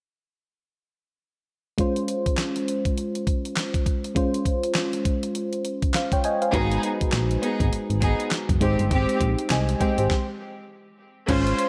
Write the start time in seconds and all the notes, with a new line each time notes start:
1.78 G#3 C#4 F4 C5, kick, closed hi-hat
1.96 closed hi-hat
2.08 closed hi-hat
2.26 kick, closed hi-hat
2.38 snare, clap, closed hi-hat
2.56 closed hi-hat
2.68 closed hi-hat
2.85 kick, closed hi-hat
2.98 closed hi-hat
3.15 closed hi-hat
3.27 kick, closed hi-hat
3.45 closed hi-hat
3.56 snare, clap, closed hi-hat
3.74 kick, closed hi-hat
3.86 kick, closed hi-hat
4.04 closed hi-hat
4.15 G#3 C#4 F4 C5, kick, closed hi-hat
4.34 closed hi-hat
4.45 kick, closed hi-hat
4.63 closed hi-hat
4.75 snare, clap, closed hi-hat
4.93 closed hi-hat
5.05 kick, closed hi-hat
5.23 closed hi-hat
5.35 closed hi-hat
5.53 closed hi-hat
5.65 closed hi-hat
5.82 kick, closed hi-hat
5.94 C5 F5, snare, clap, closed hi-hat
6.12 C#5 G5, kick, closed hi-hat
6.24 D#5 G#5, closed hi-hat
6.42 C5 F5, closed hi-hat
6.52 G#1 G#3 B3 D#4 F#4 G#4 B4, kick, closed hi-hat
6.71 closed hi-hat
6.83 closed hi-hat
7.01 A#1, kick, closed hi-hat
7.12 A#1, snare, clap, closed hi-hat
7.31 closed hi-hat
7.42 B3 D#4 G#4, closed hi-hat
7.60 G#1, kick, closed hi-hat
7.72 G#1, closed hi-hat
7.90 G#1, closed hi-hat
8.01 B3 D#4 G#4, kick, closed hi-hat
8.20 closed hi-hat
8.31 snare, clap, closed hi-hat
8.49 F#1, kick, closed hi-hat
8.61 G#1 G#3 C4 D#4 G4 C5, kick, closed hi-hat
8.79 G1, closed hi-hat
8.91 G#1 G#3 C4 G4, kick, closed hi-hat
9.09 closed hi-hat
9.21 A#1, kick, closed hi-hat
9.39 closed hi-hat
9.50 C2 D#5 G#5, snare, clap, closed hi-hat
9.69 closed hi-hat
9.80 G#3 C4 G4 C5 G5, kick, closed hi-hat
9.98 G#1 G4 C5, closed hi-hat
10.10 kick, snare
11.28 G#1 G#3 C#4 F4 C5, kick, closed hi-hat, crash
11.47 closed hi-hat
11.59 closed hi-hat